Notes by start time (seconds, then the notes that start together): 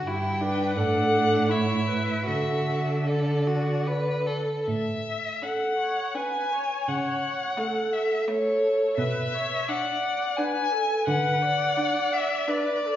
0.07 G2 E4 G4 G5
0.41 D4 B4
0.76 A2 D4 A4 F#5
1.49 E4 C#5 E5
1.88 B4
2.26 D3 F#4 A4 E5
3.06 A4 D5
3.47 F#4
3.87 B4
4.27 A4
4.67 A2 E5
5.42 C#4 A4 F#5
5.78 C#5
6.14 C#4 B4 G#5
6.52 C#5
6.88 C#3 F#5
7.57 A3 A4
7.92 E5
8.27 A3 A4 C#5
8.97 B2 B4 E5
9.33 C#5
9.68 D4 D5 F#5
10.36 D4 B4 G#5
10.71 A4
11.07 D3 B4 F#5
11.42 D5
11.77 D4
12.12 E5
12.48 D4 B4 D5
12.86 A4